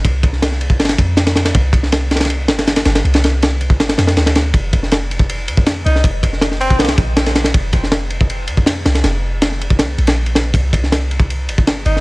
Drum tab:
RD |x---x---x---x---xxx-x---x-x-x-x-|x---x---x---xxxxx---x-x-x-x-x-x-|x-x-x---x---x---x-x-x-x-x-x-x---|x---x---x---x---x---x---x---x---|
SD |------o-o-o-----ooo-----o-o-o-o-|------o-o---oooo----o-o-o-o-o-o-|--o-o---o-------o-o-o-o-o-o-o---|------o-o---------------o-----o-|
BD |o---o---------o-----o-----------|o---o---------------------------|--------------o-----------------|o---o---------o-------o---------|

RD |x---x---x---x---xxx-x---x-x-x-x-|x---x---x---x---x---x---x---x-x-|x-------x---x---x---x-x---x-x---|x---x---x---x---x---x---x---x---|
SD |------o-o-o-----ooo-----o-o-o-o-|------o-o---------------o---o-o-|o-------o-o-----o-----o-----o---|------o-o---------------o-----o-|
BD |o---o---------o-----o-----------|o---o---------o-------o---------|--------------o-----------------|o---o---------o-------o---------|